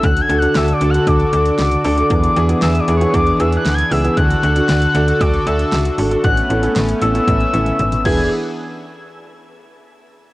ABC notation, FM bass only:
X:1
M:4/4
L:1/8
Q:1/4=116
K:Dlyd
V:1 name="FM bass" clef=bass
D,, D,, D,, D,, D,, D,, C,, D,, | E,, E,, E,, E,, E,, E,, D,, C,, | D,, D,, D,, D,, D,, D,, C,, G,,, | A,,, A,,, A,,, A,,, A,,, A,,, G,,, E,,, |
z8 |]